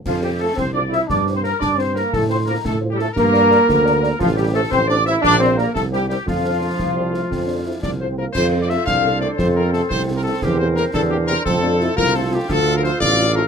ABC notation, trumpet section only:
X:1
M:6/8
L:1/16
Q:3/8=116
K:F
V:1 name="Trumpet section"
F2 G2 A2 c2 d2 e2 | d3 c B2 d2 c2 B2 | A2 c2 B2 A3 G A2 | B12 |
F2 G2 A2 c2 d2 e2 | d2 c2 B2 A2 G2 G2 | F12- | F6 d2 c2 B2 |
c3 d e2 f4 d2 | c2 B2 A2 c3 B A2 | G2 c2 B2 A2 G2 B2 | A6 B2 A2 G2 |
A3 B c2 d4 B2 |]